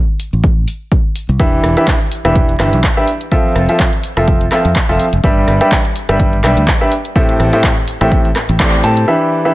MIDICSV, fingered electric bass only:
0, 0, Header, 1, 2, 480
1, 0, Start_track
1, 0, Tempo, 480000
1, 1397, Time_signature, 4, 2, 24, 8
1, 9541, End_track
2, 0, Start_track
2, 0, Title_t, "Fingered electric bass"
2, 0, Program_c, 0, 33
2, 330, Note_on_c, 0, 33, 79
2, 646, Note_off_c, 0, 33, 0
2, 1289, Note_on_c, 0, 36, 100
2, 1377, Note_off_c, 0, 36, 0
2, 1637, Note_on_c, 0, 28, 88
2, 1745, Note_off_c, 0, 28, 0
2, 2250, Note_on_c, 0, 28, 83
2, 2565, Note_off_c, 0, 28, 0
2, 2596, Note_on_c, 0, 31, 98
2, 2705, Note_off_c, 0, 31, 0
2, 2729, Note_on_c, 0, 35, 101
2, 2817, Note_off_c, 0, 35, 0
2, 3557, Note_on_c, 0, 29, 91
2, 3665, Note_off_c, 0, 29, 0
2, 4170, Note_on_c, 0, 29, 81
2, 4485, Note_off_c, 0, 29, 0
2, 4650, Note_on_c, 0, 41, 94
2, 4737, Note_off_c, 0, 41, 0
2, 4890, Note_on_c, 0, 29, 80
2, 4977, Note_off_c, 0, 29, 0
2, 5130, Note_on_c, 0, 29, 99
2, 5218, Note_off_c, 0, 29, 0
2, 5477, Note_on_c, 0, 31, 91
2, 5585, Note_off_c, 0, 31, 0
2, 6090, Note_on_c, 0, 31, 84
2, 6406, Note_off_c, 0, 31, 0
2, 6437, Note_on_c, 0, 35, 100
2, 6546, Note_off_c, 0, 35, 0
2, 6571, Note_on_c, 0, 38, 100
2, 6658, Note_off_c, 0, 38, 0
2, 7397, Note_on_c, 0, 33, 93
2, 7506, Note_off_c, 0, 33, 0
2, 8011, Note_on_c, 0, 33, 83
2, 8326, Note_off_c, 0, 33, 0
2, 8491, Note_on_c, 0, 33, 101
2, 8806, Note_off_c, 0, 33, 0
2, 8838, Note_on_c, 0, 45, 101
2, 9038, Note_off_c, 0, 45, 0
2, 9541, End_track
0, 0, End_of_file